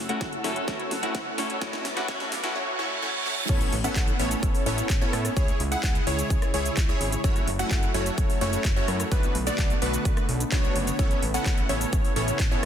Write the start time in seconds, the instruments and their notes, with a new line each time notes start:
Already playing: analog synth bass F#1, analog synth pad A4 F#5 E6, riser
0.09 clean electric guitar A3 C#4 E4 F#4, supersaw synth A3 C#4 E4 F#4 F#5, closed hi-hat
0.21 analog synth bass F#1, kick, snare, closed hi-hat
0.33 closed hi-hat
0.44 analog synth bass F#1, clean electric guitar A3 C#4 E4 A4, supersaw synth A3 C#4 E4 F#4 C#5, snare, open hi-hat
0.56 closed hi-hat
0.67 analog synth bass F#1, clean electric guitar A3 C#4 E4 F#4, supersaw synth A3 C#4 E4 F#4 C#5, kick, snare, closed hi-hat
0.80 closed hi-hat
0.91 analog synth bass F#1, snare, open hi-hat
1.02 clean electric guitar A3 C#4 E4 F#4, supersaw synth A3 C#4 E4 F#4 F#5, closed hi-hat
1.15 analog synth bass F#1, kick, snare, closed hi-hat
1.37 analog synth bass F#1, clean electric guitar A3 C#4 E4 A4, supersaw synth A3 C#4 E4 F#4 C#5, snare, open hi-hat
1.50 closed hi-hat
1.61 analog synth bass B1, clean electric guitar A3 C#4 E4 F#4, supersaw synth A3 C#4 E4 F#4 C#5, analog synth pad B4 A5 D6, kick, snare, closed hi-hat
1.73 snare, closed hi-hat
1.85 analog synth bass B1, snare, open hi-hat
1.96 clean electric guitar A3 C#4 E4 F#4, supersaw synth A3 C#4 E4 F#4 F#5, snare, closed hi-hat
2.08 analog synth bass B1, clean electric guitar A3 C#4 E4 F#4, supersaw synth A3 C#4 E4 F#4 C#5, kick, snare, closed hi-hat
2.20 snare, closed hi-hat
2.32 analog synth bass B1, snare, open hi-hat
2.43 clean electric guitar A3 C#4 E4 F#4, supersaw synth A3 C#4 E4 F#4 F#5, snare, closed hi-hat
2.55 supersaw synth A3 C#4 E4 F#4 C#5, reverse cymbal
2.79 supersaw synth A3 C#4 E4 F#4 C#5
3.02 supersaw synth A3 C#4 E4 F#4 C#5
3.26 supersaw synth A3 C#4 E4 F#4 C#5
3.49 analog synth bass A1, analog synth pad A3 B3 C#4, supersaw synth B3 C#4 E4 A4 C#5, digital synth lead C#5, kick, closed hi-hat, crash, impact, shaker
3.61 closed hi-hat, shaker
3.73 analog synth bass A1, open hi-hat
3.84 supersaw synth B3 C#4 E4 A4 F#5, digital synth lead F#5, closed hi-hat, shaker
3.96 analog synth bass A1, kick, clap, closed hi-hat, shaker
4.08 closed hi-hat, shaker
4.19 analog synth bass A1, supersaw synth B3 C#4 E4 A4 C#5, digital synth lead C#5, open hi-hat
4.31 closed hi-hat, shaker
4.43 analog synth bass A1, kick, closed hi-hat, shaker
4.55 open hi-hat, shaker
4.66 analog synth bass A1, supersaw synth B3 C#4 E4 A4 C#5, digital synth lead C#5, open hi-hat
4.78 closed hi-hat, shaker
4.90 analog synth bass A1, kick, clap, closed hi-hat, shaker
5.01 supersaw synth B3 C#4 E4 A4 C#5, digital synth lead C#5, shaker
5.13 analog synth bass A2, cross-stick, open hi-hat
5.25 cross-stick, closed hi-hat, shaker
5.36 analog synth bass C#2, analog synth pad C#3 G#3 E4, supersaw synth E4 G#4 C#5, digital synth lead C#5, kick, closed hi-hat, shaker
5.48 closed hi-hat, shaker
5.60 analog synth bass C#2, open hi-hat
5.72 supersaw synth E4 G#4 F#5, digital synth lead F#5, closed hi-hat, shaker
5.83 analog synth bass C#2, kick, clap, closed hi-hat, shaker
5.95 closed hi-hat, shaker
6.07 analog synth bass C#2, supersaw synth E4 G#4 C#5, digital synth lead C#5, open hi-hat
6.19 closed hi-hat, shaker
6.30 analog synth bass C#2, kick, closed hi-hat, shaker
6.42 cross-stick, closed hi-hat, shaker
6.54 analog synth bass C#2, supersaw synth E4 G#4 C#5, digital synth lead C#5, open hi-hat
6.66 closed hi-hat, shaker
6.77 analog synth bass C#2, kick, clap, closed hi-hat, shaker
6.89 supersaw synth E4 G#4 C#5, digital synth lead C#5, shaker
7.01 analog synth bass G#1, open hi-hat
7.12 closed hi-hat, shaker
7.24 analog synth bass F#1, analog synth pad F#3 A4, supersaw synth A3 C#4 E4 F#4 C#5, digital synth lead C#5, kick, closed hi-hat, shaker
7.36 closed hi-hat, shaker
7.48 analog synth bass F#1, open hi-hat
7.59 supersaw synth A3 C#4 E4 F#4 F#5, digital synth lead F#5, closed hi-hat, shaker
7.71 analog synth bass F#1, kick, clap, closed hi-hat, shaker
7.83 closed hi-hat, shaker
7.94 analog synth bass F#1, supersaw synth A3 C#4 E4 F#4 C#5, digital synth lead C#5, open hi-hat
8.06 closed hi-hat, shaker
8.18 analog synth bass F#1, kick, closed hi-hat, shaker
8.30 open hi-hat, shaker
8.41 analog synth bass F#1, supersaw synth A3 C#4 E4 F#4 C#5, digital synth lead C#5, open hi-hat
8.53 closed hi-hat, shaker
8.65 analog synth bass F#1, kick, clap, closed hi-hat, shaker
8.76 supersaw synth A3 C#4 E4 F#4 C#5, digital synth lead C#5, shaker
8.88 analog synth bass F#2, cross-stick, open hi-hat
9.00 cross-stick, closed hi-hat, shaker
9.11 analog synth bass B1, analog synth pad D3 A3 B3, supersaw synth A3 B3 D4 F#4 B4, digital synth lead B4, kick, closed hi-hat, shaker
9.23 closed hi-hat, shaker
9.35 analog synth bass B1, open hi-hat
9.47 supersaw synth A3 B3 D4 F#4 D5, digital synth lead D5, closed hi-hat, shaker
9.58 analog synth bass B1, kick, clap, closed hi-hat, shaker
9.70 closed hi-hat, shaker
9.82 analog synth bass B1, supersaw synth A3 B3 D4 F#4 B4, digital synth lead B4, open hi-hat
9.94 closed hi-hat, shaker
10.05 analog synth bass B1, kick, closed hi-hat, shaker
10.17 cross-stick, closed hi-hat, shaker
10.29 analog synth bass B1, open hi-hat
10.40 closed hi-hat, shaker
10.52 analog synth bass B1, supersaw synth A3 B3 D4 F#4 C#5, digital synth lead C#5, kick, clap, closed hi-hat, shaker
10.64 shaker
10.76 analog synth bass F#1, open hi-hat
10.87 closed hi-hat, shaker
10.99 analog synth bass A1, analog synth pad C#3, supersaw synth B3 C#4 E4 A4 C#5, digital synth lead C#5, kick, closed hi-hat, shaker
11.11 closed hi-hat, shaker
11.22 analog synth bass A1, open hi-hat
11.34 supersaw synth B3 C#4 E4 A4 F#5, digital synth lead F#5, closed hi-hat, shaker
11.46 analog synth bass A1, kick, clap, closed hi-hat, shaker
11.58 closed hi-hat, shaker
11.69 analog synth bass A1, supersaw synth B3 C#4 E4 A4 C#5, digital synth lead C#5, open hi-hat
11.81 closed hi-hat, shaker
11.93 analog synth bass A1, kick, closed hi-hat, shaker
12.05 open hi-hat, shaker
12.16 analog synth bass A1, supersaw synth B3 C#4 E4 A4 C#5, digital synth lead C#5, open hi-hat
12.28 closed hi-hat, shaker
12.40 analog synth bass A1, kick, clap, closed hi-hat, shaker
12.51 supersaw synth B3 C#4 E4 A4 C#5, digital synth lead C#5, shaker